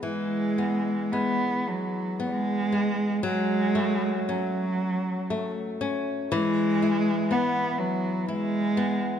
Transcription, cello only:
X:1
M:3/4
L:1/8
Q:1/4=58
K:E
V:1 name="Cello" clef=bass
G,2 B, F, G,2 | G,2 F,3 z | G,2 B, F, G,2 |]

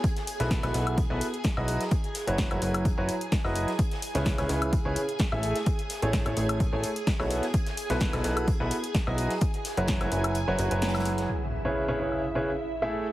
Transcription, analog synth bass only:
X:1
M:4/4
L:1/16
Q:"Swing 16ths" 1/4=128
K:C#m
V:1 name="Analog synth bass" clef=bass
z3 B,,,2 B,,, B,,,3 B,,, z3 B,,,2 z | z3 F,,,2 F,,, F,,,3 F,,, z3 F,,,2 z | z3 C,,2 C,, C,,3 C,, z3 A,,,2 z | z3 A,,,2 A,,, A,,,3 A,,, z3 B,,,2 z |
z3 B,,,2 B,,, B,,,3 B,,, z3 B,,,2 z | z3 F,,,2 F,,, F,,,3 F,,, F,,, F,,,4- F,,, | z16 |]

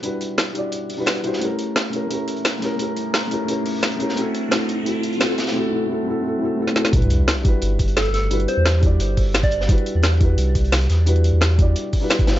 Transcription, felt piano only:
X:1
M:4/4
L:1/16
Q:1/4=174
K:Ador
V:1 name="Felt piano"
[G,DEFB] z4 z [G,DEFd]4- [G,DEFd] [G,DEFB]3 [G,DEFc]2 | [A,^CEG_B]6 [A,CEGB]2 [A,CEGB]6 [A,CEGB]2 | [A,^CEG_B]6 [A,CEGB]2 [A,CEGB]6 [A,CEGB]2 | [A,CEFA]4 [A,CEFA]4 [A,CEFA]4 [A,CEFA]4 |
[A,CEFA]2 [A,CEFA]2 [A,CEFA]2 [A,CEFA]2 [A,CEFA]2 [A,CEFA]2 [A,CEFA]2 [A,CEFA]2 | [G,DEFB]6 [G,DEFB]8- [G,DEFB]2 | [G,DEFB] z4 z [G,DEFd]8- [G,DEFd]2 | [G,DEFB]6 [G,DEFB]8- [G,DEFB]2 |
[G,DEFB] z4 z [G,DEFd]4- [G,DEFd] [G,DEFB]3 [G,DEFc]2 |]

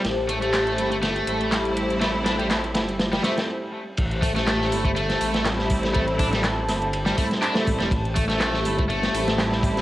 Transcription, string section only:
X:1
M:4/4
L:1/16
Q:"Swing 16ths" 1/4=122
K:Am
V:1 name="String section"
z6 [G,A,CE] z3 [G,A,CE]6- | [G,A,CE]6 [G,A,CE] z3 [G,A,CE]2 z4 | z6 [G,A,CE] z3 [G,A,CE]6- | [G,A,CE]6 [G,A,CE] z3 [G,A,CE]2 z [G,A,CE]2 z |
z6 [G,A,CE] z3 [G,A,CE]6 |]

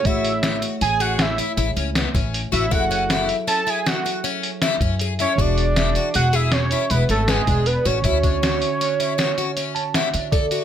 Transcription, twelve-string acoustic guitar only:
X:1
M:7/4
L:1/8
Q:1/4=158
K:A
V:1 name="Twelve-string acoustic guitar"
F2 E F G G2 E E C B, C2 F | E C E2 C E F F C2 E C G E | F2 E F G G2 E E C B, D2 F | E D F2 D E F F C2 E D A F |]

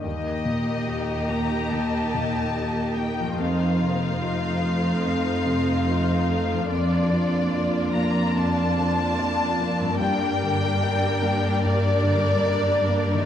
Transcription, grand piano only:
X:1
M:4/4
L:1/8
Q:1/4=72
K:Eblyd
V:1 name="Grand piano"
E,, B,, [Ge] B, E,, B,, [Ge] B, | F,, C, [Fe] A, F,, C, [Fe] A, | F,, F, [Fd] B, F,, F, [Fd] B, | G,, D, [Bd] B, G,, D, [Bd] B, |]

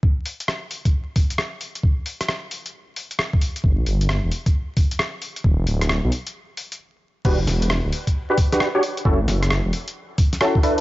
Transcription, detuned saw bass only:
X:1
M:4/4
L:1/16
Q:"Swing 16ths" 1/4=133
K:Edor
V:1 name="Detuned saw bass" clef=bass
z16 | z16 | G,,, B,,, G,,,3 E,,, z8 z2 | D,,, F,,, D,,,3 B,,, z8 z2 |
E,,, G,,, E,,,3 D,,, z8 z2 | F,,, A,,, F,,,3 E,,, z8 z2 |]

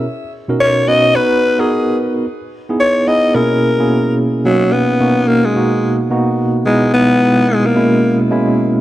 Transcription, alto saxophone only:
X:1
M:4/4
L:1/16
Q:"Swing 16ths" 1/4=109
K:B
V:1 name="Alto saxophone"
z4 c2 d2 B3 G3 z2 | z4 c2 d2 A6 z2 | F,2 B,4 A, G,4 z4 z | G,2 B,4 G, A,4 z4 z |]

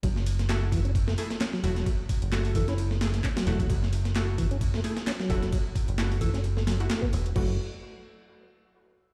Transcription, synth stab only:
X:1
M:4/4
L:1/16
Q:"Swing 16ths" 1/4=131
K:F#m
V:1 name="Synth stab"
z4 [A,EF]6 [A,EG] z3 [A,EF] z | z4 [A,EF]6 [A,EG] z3 [A,EF] z | z4 [A,EF]6 [A,EG] z3 [A,EF] z | z4 [A,EF]6 z [A,EF] z4 |
[A,EF]2 z12 z2 |]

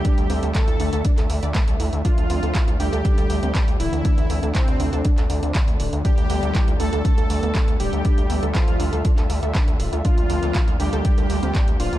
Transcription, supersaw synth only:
X:1
M:4/4
L:1/8
Q:1/4=120
K:Dm
V:1 name="Supersaw synth"
G2 A2 z4 | F3 G4 E- | E2 C2 z4 | G3 A4 G- |
G2 F2 z4 | F3 G4 F |]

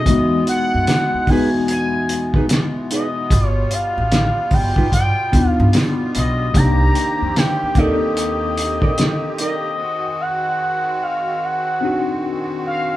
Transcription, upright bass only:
X:1
M:4/4
L:1/16
Q:"Swing 16ths" 1/4=74
K:Cdor
V:1 name="Upright bass" clef=bass
=E,,2 z ^F,, z2 E,,4- E,, z4 z | G,,,2 z A,,,2 z G,,, G,,2 z E,, G,, z2 =B,,,2 | C,,2 z F,, z2 E,,4- E,, z4 z | z16 |]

